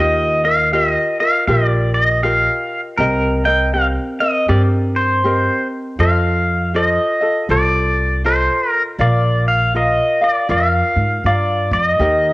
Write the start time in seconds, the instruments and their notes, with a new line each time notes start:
Already playing: upright bass D#2, ukulele G4
0.00 ukulele F4 A#4 D#5, pedal steel guitar D#5
0.44 ukulele F4 A#4 D#5, pedal steel guitar F5
0.73 ukulele F4 G4 A#4 D#5, pedal steel guitar E5
0.91 pedal steel guitar D#5
1.20 ukulele F4 A#4 D#5, pedal steel guitar F5
1.47 upright bass A#1, ukulele F4 G4 A#4, pedal steel guitar D5
1.94 pedal steel guitar D#5
2.23 ukulele F4 G4 A#4 D#5, pedal steel guitar F5
2.98 upright bass C2, ukulele C4 G4 A#4 D#5, pedal steel guitar A#4
3.45 ukulele C4 A#4 D#5, pedal steel guitar G5
3.73 ukulele C4 G4 A#4 D#5, pedal steel guitar F5
4.20 ukulele C4 A#4 D#5, pedal steel guitar D#5
4.48 upright bass G2, ukulele C4 G4 A#4, pedal steel guitar D5
4.96 pedal steel guitar C5
5.24 ukulele C4 G4 A#4 D#5
5.99 upright bass F2, ukulele F4 A4 C5 D#5, pedal steel guitar F5
6.74 ukulele F4 A4 C5 D#5, pedal steel guitar D#5
7.21 ukulele F4 A4 D#5
7.49 upright bass C2, ukulele F4 A4 C5, pedal steel guitar D5
8.24 ukulele F4 A4 C5 D#5, pedal steel guitar C5
8.70 pedal steel guitar A#4
8.99 upright bass A#1, ukulele F4 A#4 D5 F5, pedal steel guitar D5
9.48 pedal steel guitar F5
9.75 ukulele F4 A#4 F5, pedal steel guitar D#5
10.21 ukulele F4 A#4 F5, pedal steel guitar D5
10.49 upright bass F2, ukulele F4 A#4 D5 F5, pedal steel guitar F5
10.96 upright bass G#2
11.24 upright bass G2, ukulele F4 A#4 F5, pedal steel guitar D5
11.71 upright bass F2, pedal steel guitar D5
11.84 pedal steel guitar D#5
11.99 upright bass D#2, ukulele D#4 G4 A#4 D#5